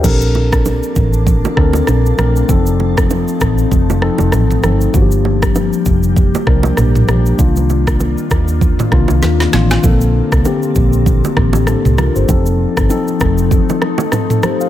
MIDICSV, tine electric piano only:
0, 0, Header, 1, 2, 480
1, 0, Start_track
1, 0, Tempo, 612245
1, 33, Time_signature, 4, 2, 24, 8
1, 11519, End_track
2, 0, Start_track
2, 0, Title_t, "Tine electric piano"
2, 0, Program_c, 0, 4
2, 0, Control_c, 0, 64, 127
2, 0, Note_on_c, 0, 67, 62
2, 23, Note_on_c, 0, 69, 89
2, 29, Note_on_c, 0, 60, 79
2, 36, Note_on_c, 0, 62, 80
2, 42, Note_on_c, 0, 70, 97
2, 45, Control_c, 0, 64, 0
2, 160, Note_off_c, 0, 67, 0
2, 200, Control_c, 0, 64, 127
2, 669, Note_off_c, 0, 69, 0
2, 672, Note_off_c, 0, 60, 0
2, 675, Note_off_c, 0, 62, 0
2, 679, Note_off_c, 0, 70, 0
2, 1223, Note_on_c, 0, 69, 88
2, 1229, Note_on_c, 0, 60, 79
2, 1236, Note_on_c, 0, 62, 80
2, 1242, Note_on_c, 0, 70, 92
2, 1553, Note_off_c, 0, 69, 0
2, 1556, Note_off_c, 0, 60, 0
2, 1559, Note_off_c, 0, 62, 0
2, 1563, Note_off_c, 0, 70, 0
2, 1703, Note_on_c, 0, 57, 76
2, 1709, Note_on_c, 0, 60, 71
2, 1716, Note_on_c, 0, 62, 75
2, 1722, Note_on_c, 0, 70, 85
2, 1878, Note_off_c, 0, 57, 0
2, 1881, Note_off_c, 0, 60, 0
2, 1884, Note_off_c, 0, 62, 0
2, 1888, Note_off_c, 0, 70, 0
2, 1943, Note_on_c, 0, 53, 87
2, 1949, Note_on_c, 0, 60, 79
2, 1956, Note_on_c, 0, 63, 77
2, 1962, Control_c, 0, 64, 0
2, 1963, Note_on_c, 0, 69, 96
2, 2099, Control_c, 0, 64, 127
2, 2589, Note_off_c, 0, 53, 0
2, 2592, Note_off_c, 0, 60, 0
2, 2596, Note_off_c, 0, 63, 0
2, 2599, Note_off_c, 0, 69, 0
2, 3143, Note_on_c, 0, 53, 85
2, 3150, Note_on_c, 0, 60, 80
2, 3156, Note_on_c, 0, 63, 78
2, 3163, Note_on_c, 0, 69, 96
2, 3473, Note_off_c, 0, 53, 0
2, 3476, Note_off_c, 0, 60, 0
2, 3479, Note_off_c, 0, 63, 0
2, 3483, Note_off_c, 0, 69, 0
2, 3624, Note_on_c, 0, 53, 78
2, 3630, Note_on_c, 0, 60, 73
2, 3637, Note_on_c, 0, 63, 72
2, 3643, Note_on_c, 0, 69, 85
2, 3798, Note_off_c, 0, 53, 0
2, 3801, Note_off_c, 0, 60, 0
2, 3805, Note_off_c, 0, 63, 0
2, 3808, Note_off_c, 0, 69, 0
2, 3864, Note_on_c, 0, 53, 92
2, 3870, Note_on_c, 0, 58, 82
2, 3877, Note_on_c, 0, 62, 79
2, 3883, Note_on_c, 0, 66, 80
2, 3885, Control_c, 0, 64, 0
2, 3934, Note_on_c, 0, 67, 98
2, 3937, Note_off_c, 0, 66, 0
2, 4030, Control_c, 0, 64, 127
2, 4510, Note_off_c, 0, 53, 0
2, 4513, Note_off_c, 0, 58, 0
2, 4516, Note_off_c, 0, 62, 0
2, 4545, Note_off_c, 0, 67, 0
2, 5063, Note_on_c, 0, 53, 84
2, 5069, Note_on_c, 0, 58, 77
2, 5076, Note_on_c, 0, 62, 80
2, 5083, Note_on_c, 0, 70, 92
2, 5393, Note_off_c, 0, 53, 0
2, 5396, Note_off_c, 0, 58, 0
2, 5399, Note_off_c, 0, 62, 0
2, 5403, Note_off_c, 0, 70, 0
2, 5543, Note_on_c, 0, 53, 78
2, 5549, Note_on_c, 0, 58, 71
2, 5556, Note_on_c, 0, 62, 73
2, 5562, Note_on_c, 0, 67, 89
2, 5718, Note_off_c, 0, 53, 0
2, 5721, Note_off_c, 0, 58, 0
2, 5724, Note_off_c, 0, 62, 0
2, 5728, Note_off_c, 0, 67, 0
2, 5783, Note_on_c, 0, 51, 89
2, 5790, Note_on_c, 0, 58, 81
2, 5796, Note_on_c, 0, 62, 84
2, 5803, Control_c, 0, 64, 0
2, 5803, Note_on_c, 0, 65, 96
2, 5951, Control_c, 0, 64, 127
2, 6429, Note_off_c, 0, 51, 0
2, 6433, Note_off_c, 0, 58, 0
2, 6436, Note_off_c, 0, 62, 0
2, 6439, Note_off_c, 0, 65, 0
2, 6982, Note_on_c, 0, 51, 85
2, 6989, Note_on_c, 0, 58, 80
2, 6996, Note_on_c, 0, 62, 78
2, 7002, Note_on_c, 0, 65, 95
2, 7313, Note_off_c, 0, 51, 0
2, 7316, Note_off_c, 0, 58, 0
2, 7319, Note_off_c, 0, 62, 0
2, 7322, Note_off_c, 0, 65, 0
2, 7463, Note_on_c, 0, 51, 76
2, 7470, Note_on_c, 0, 58, 73
2, 7476, Note_on_c, 0, 62, 74
2, 7482, Note_on_c, 0, 65, 89
2, 7638, Note_off_c, 0, 51, 0
2, 7641, Note_off_c, 0, 58, 0
2, 7644, Note_off_c, 0, 62, 0
2, 7648, Note_off_c, 0, 65, 0
2, 7702, Note_on_c, 0, 50, 90
2, 7709, Note_on_c, 0, 58, 85
2, 7716, Note_on_c, 0, 60, 81
2, 7722, Control_c, 0, 64, 0
2, 7722, Note_on_c, 0, 69, 101
2, 7865, Control_c, 0, 64, 127
2, 8032, Note_off_c, 0, 50, 0
2, 8036, Note_off_c, 0, 58, 0
2, 8039, Note_off_c, 0, 60, 0
2, 8042, Note_off_c, 0, 69, 0
2, 8183, Note_on_c, 0, 50, 86
2, 8189, Note_on_c, 0, 58, 81
2, 8196, Note_on_c, 0, 60, 78
2, 8202, Note_on_c, 0, 67, 98
2, 8829, Note_off_c, 0, 50, 0
2, 8832, Note_off_c, 0, 58, 0
2, 8836, Note_off_c, 0, 60, 0
2, 8839, Note_off_c, 0, 67, 0
2, 9052, Note_on_c, 0, 67, 68
2, 9056, Note_on_c, 0, 62, 59
2, 9148, Note_off_c, 0, 62, 0
2, 9148, Note_off_c, 0, 67, 0
2, 9153, Note_on_c, 0, 69, 74
2, 9158, Note_on_c, 0, 62, 65
2, 9381, Note_off_c, 0, 69, 0
2, 9383, Note_off_c, 0, 62, 0
2, 9392, Note_on_c, 0, 70, 74
2, 9397, Note_on_c, 0, 65, 65
2, 9525, Note_off_c, 0, 70, 0
2, 9527, Note_off_c, 0, 65, 0
2, 9533, Note_on_c, 0, 72, 68
2, 9538, Note_on_c, 0, 67, 57
2, 9623, Note_on_c, 0, 53, 90
2, 9630, Note_on_c, 0, 60, 83
2, 9636, Note_on_c, 0, 63, 84
2, 9643, Note_on_c, 0, 69, 96
2, 9644, Control_c, 0, 64, 0
2, 9760, Note_off_c, 0, 72, 0
2, 9763, Note_off_c, 0, 67, 0
2, 9792, Control_c, 0, 64, 127
2, 9953, Note_off_c, 0, 53, 0
2, 9956, Note_off_c, 0, 60, 0
2, 9959, Note_off_c, 0, 63, 0
2, 9963, Note_off_c, 0, 69, 0
2, 10103, Note_on_c, 0, 53, 90
2, 10110, Note_on_c, 0, 60, 83
2, 10116, Note_on_c, 0, 63, 83
2, 10123, Note_on_c, 0, 69, 99
2, 10749, Note_off_c, 0, 53, 0
2, 10752, Note_off_c, 0, 60, 0
2, 10756, Note_off_c, 0, 63, 0
2, 10759, Note_off_c, 0, 69, 0
2, 11212, Note_on_c, 0, 69, 67
2, 11217, Note_on_c, 0, 63, 60
2, 11308, Note_off_c, 0, 69, 0
2, 11311, Note_off_c, 0, 63, 0
2, 11313, Note_on_c, 0, 72, 75
2, 11317, Note_on_c, 0, 67, 65
2, 11445, Note_off_c, 0, 72, 0
2, 11447, Note_off_c, 0, 67, 0
2, 11453, Note_on_c, 0, 77, 72
2, 11457, Note_on_c, 0, 72, 61
2, 11519, Note_off_c, 0, 72, 0
2, 11519, Note_off_c, 0, 77, 0
2, 11519, End_track
0, 0, End_of_file